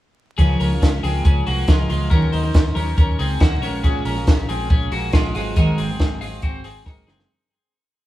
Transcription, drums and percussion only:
0.39 kick medium
0.39 closed hi-hat medium
0.60 open hi-hat medium
0.82 kick loud
0.82 snare loud
0.82 closed hi-hat medium
1.04 open hi-hat medium
1.25 kick loud
1.25 closed hi-hat medium
1.47 open hi-hat medium
1.68 kick loud
1.68 snare loud
1.68 closed hi-hat medium
1.90 open hi-hat medium
2.11 kick medium
2.11 closed hi-hat medium
2.33 open hi-hat medium
2.54 kick loud
2.54 snare loud
2.54 closed hi-hat medium
2.77 open hi-hat medium
2.98 kick loud
2.98 closed hi-hat medium
3.19 open hi-hat medium
3.40 kick loud
3.40 snare loud
3.40 closed hi-hat medium
3.63 open hi-hat medium
3.84 kick medium
3.84 closed hi-hat medium
4.05 open hi-hat medium
4.27 kick loud
4.27 snare loud
4.27 closed hi-hat medium
4.49 open hi-hat medium
4.70 kick loud
4.70 closed hi-hat medium
4.92 open hi-hat medium
5.13 kick loud
5.13 snare loud
5.13 closed hi-hat medium
5.35 open hi-hat medium
5.56 kick medium
5.56 closed hi-hat medium
5.78 open hi-hat medium
6.00 kick loud
6.00 snare loud
6.00 closed hi-hat medium
6.22 open hi-hat medium
6.42 kick medium
6.42 closed hi-hat medium
6.64 open hi-hat medium
6.86 kick loud
6.86 snare medium
7.08 snare medium
7.20 snare medium

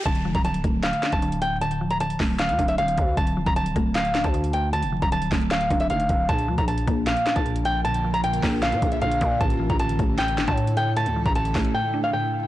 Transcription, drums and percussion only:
0.06 kick loud
0.06 closed hi-hat medium
0.15 closed hi-hat medium
0.35 kick loud
0.35 closed hi-hat medium
0.44 closed hi-hat loud
0.54 closed hi-hat medium
0.64 kick medium
0.64 closed hi-hat medium
0.83 snare loud
0.83 clap loud
0.83 closed hi-hat medium
0.93 closed hi-hat medium
1.03 snare loud
1.03 clap medium
1.03 closed hi-hat medium
1.12 kick medium
1.12 closed hi-hat medium
1.22 closed hi-hat medium
1.32 closed hi-hat medium
1.42 closed hi-hat medium
1.61 closed hi-hat medium
1.71 closed hi-hat medium
1.90 closed hi-hat medium
2.00 closed hi-hat loud
2.10 closed hi-hat medium
2.20 kick medium
2.20 snare loud
2.20 clap medium
2.20 open hi-hat medium
2.39 snare loud
2.39 clap loud
2.39 closed hi-hat medium
2.49 closed hi-hat medium
2.59 kick medium
2.59 closed hi-hat medium
2.68 closed hi-hat medium
2.78 closed hi-hat medium
2.88 closed hi-hat medium
2.98 kick loud
2.98 closed hi-hat medium
3.17 kick loud
3.17 closed hi-hat medium
3.27 closed hi-hat medium
3.46 kick loud
3.46 closed hi-hat medium
3.56 closed hi-hat loud
3.66 closed hi-hat medium
3.76 kick medium
3.76 closed hi-hat medium
3.95 snare loud
3.95 clap loud
3.95 closed hi-hat medium
4.05 closed hi-hat medium
4.15 snare loud
4.15 clap medium
4.15 closed hi-hat medium
4.24 kick medium
4.24 closed hi-hat medium
4.34 closed hi-hat medium
4.44 closed hi-hat medium
4.53 closed hi-hat medium
4.73 closed hi-hat medium
4.83 closed hi-hat medium
5.02 kick loud
5.02 closed hi-hat medium
5.12 closed hi-hat medium
5.22 closed hi-hat medium
5.32 kick medium
5.32 snare loud
5.32 clap medium
5.32 closed hi-hat medium
5.32 open hi-hat medium
5.41 closed hi-hat soft
5.51 snare loud
5.51 clap loud
5.51 closed hi-hat medium
5.61 closed hi-hat medium
5.70 kick loud
5.70 closed hi-hat medium
5.80 closed hi-hat medium
5.90 closed hi-hat medium
6.00 closed hi-hat medium
6.09 kick loud
6.09 closed hi-hat medium
6.29 kick loud
6.29 closed hi-hat medium
6.38 closed hi-hat medium
6.58 kick loud
6.58 closed hi-hat medium
6.68 closed hi-hat loud
6.78 closed hi-hat medium
6.87 kick medium
6.87 closed hi-hat medium
7.07 snare loud
7.07 clap medium
7.07 closed hi-hat medium
7.17 closed hi-hat medium
7.26 snare loud
7.26 clap medium
7.26 closed hi-hat medium
7.36 kick medium
7.36 closed hi-hat medium
7.46 closed hi-hat medium
7.56 closed hi-hat medium
7.65 closed hi-hat medium
7.85 closed hi-hat medium
7.94 closed hi-hat medium
8.14 closed hi-hat medium
8.24 closed hi-hat loud
8.34 closed hi-hat medium
8.43 kick medium
8.43 snare loud
8.43 clap medium
8.43 open hi-hat medium
8.62 snare loud
8.62 clap loud
8.62 closed hi-hat medium
8.72 closed hi-hat medium
8.82 kick loud
8.82 closed hi-hat medium
8.92 closed hi-hat medium
9.02 closed hi-hat medium
9.11 closed hi-hat medium
9.21 kick medium
9.21 closed hi-hat medium
9.41 kick loud
9.41 closed hi-hat medium
9.50 closed hi-hat medium
9.70 kick medium
9.70 closed hi-hat medium
9.80 closed hi-hat loud
9.89 closed hi-hat medium
9.99 kick medium
9.99 closed hi-hat medium
10.18 snare loud
10.18 clap loud
10.18 closed hi-hat medium
10.28 closed hi-hat medium
10.38 snare loud
10.38 clap medium
10.38 closed hi-hat medium
10.47 kick loud
10.47 closed hi-hat medium
10.57 closed hi-hat medium
10.67 closed hi-hat medium
10.77 closed hi-hat medium
10.97 closed hi-hat medium
11.06 closed hi-hat medium
11.26 kick loud
11.26 closed hi-hat medium
11.35 closed hi-hat loud
11.45 closed hi-hat medium
11.55 kick medium
11.55 snare loud
11.55 clap medium
11.55 closed hi-hat medium
11.55 open hi-hat medium
11.65 closed hi-hat soft

